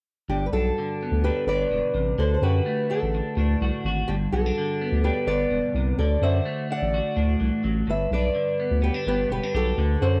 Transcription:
0.29 sub bass G1, clean electric guitar G2, steel-string acoustic guitar D4 G4
0.46 steel-string acoustic guitar B4
0.52 sub bass B1, clean electric guitar D4, steel-string acoustic guitar F#4 A4
0.78 clean electric guitar D3
1.03 clean electric guitar B3
1.11 sub bass D2
1.24 clean electric guitar D4, steel-string acoustic guitar G4 B4
1.46 sub bass G1, clean electric guitar G2 B3, steel-string acoustic guitar B4 D5
1.71 sub bass E1, clean electric guitar B2
1.94 sub bass A1, clean electric guitar C3
2.18 sub bass D2, clean electric guitar D3, steel-string acoustic guitar A4 C5
2.34 steel-string acoustic guitar C5
2.42 sub bass F#2, clean electric guitar F#4, steel-string acoustic guitar G4 B4
2.66 clean electric guitar A3
2.90 clean electric guitar D4, steel-string acoustic guitar F#4 A4
3.02 sub bass A1
3.15 muted clean electric guitar stroke
3.36 sub bass D2, clean electric guitar A2 D4
3.61 sub bass C2, clean electric guitar F#4
3.84 sub bass G#1, clean electric guitar F#4
4.08 sub bass G1, clean electric guitar G2, steel-string acoustic guitar D4 G4
4.32 sub bass B1, clean electric guitar B3, steel-string acoustic guitar F#4 A4
4.46 clean electric guitar D4
4.58 clean electric guitar D3
4.82 clean electric guitar B3
4.92 sub bass D2
5.04 clean electric guitar D4, steel-string acoustic guitar G4 B4
5.27 sub bass G1, clean electric guitar G2 B3, steel-string acoustic guitar B4 D5
5.50 sub bass E1, clean electric guitar B2
5.74 sub bass C2, clean electric guitar C3
5.98 sub bass D2, clean electric guitar D3, steel-string acoustic guitar A4 D5
6.21 sub bass F#2, clean electric guitar F#4, steel-string acoustic guitar C5 E5
6.45 clean electric guitar A3
6.71 clean electric guitar D4, steel-string acoustic guitar D5 F#5
6.82 sub bass A1
6.94 clean electric guitar F#4
7.16 sub bass D2, clean electric guitar A2 D4
7.40 sub bass C2, clean electric guitar E3
7.64 sub bass A1, clean electric guitar F#3
7.87 sub bass G1, clean electric guitar G2, steel-string acoustic guitar B4 E5
8.11 sub bass B1, clean electric guitar D4, steel-string acoustic guitar B4 D5
8.35 clean electric guitar D3
8.60 clean electric guitar B3
8.71 sub bass D2
8.82 clean electric guitar B3, steel-string acoustic guitar G4 B4
8.94 clean electric guitar D4
9.06 sub bass G1, clean electric guitar G2 B3, steel-string acoustic guitar G4 B4
9.30 sub bass E1, clean electric guitar B3, steel-string acoustic guitar G4 B4
9.43 clean electric guitar D4
9.54 sub bass B1, steel-string acoustic guitar F#4 A4, clean electric guitar G4
9.77 sub bass D2, clean electric guitar D3
10.02 sub bass F#2, clean electric guitar F#4, steel-string acoustic guitar A4 C5

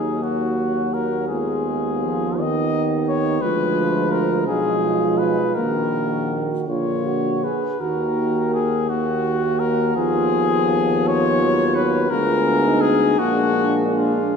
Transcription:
Already playing: tuba D#2, trombone F#3, euphonium A#3, french horn section D#4, cornet G#4
0.23 cornet F#4, french horn section F#4
0.93 cornet A#4
1.28 trombone G#3, euphonium B3, french horn section F4, cornet G#4
1.67 trombone G#3
2.04 trombone F3
2.39 trombone D#3, euphonium B3, french horn section D#4, cornet D#5
3.08 cornet C#5
3.42 tuba D2, trombone F3, euphonium G#3, french horn section F4, cornet B4
4.12 cornet A#4
4.47 tuba B1, trombone F3, euphonium G#3, french horn section F4, cornet G#4
5.18 cornet B4
5.55 tuba A#1, trombone D#3, euphonium A#3, french horn section F#4, cornet A#4
6.67 tuba A#1, trombone D3, euphonium A#3, french horn section F4, cornet C#5
7.06 french horn section F#4
7.44 french horn section G#4, cornet B4
7.80 tuba D#2, trombone D#3, euphonium A#3, french horn section F#4, cornet A#4
8.54 cornet G#4
8.89 trombone D#3, euphonium A#3, cornet F#4, french horn section F#4
9.59 cornet A#4
9.96 tuba D#2, trombone F3, euphonium B3, french horn section F4, cornet G#4
11.08 cornet C#5
11.42 trombone F#3
11.76 cornet B4
12.10 tuba D2, trombone G#3, euphonium B3, french horn section F4, cornet A#4
12.64 french horn section D#4
12.81 cornet G#4
13.19 tuba A#1, trombone G#3, euphonium A#3, french horn section D4, cornet F#4
13.96 cornet F4

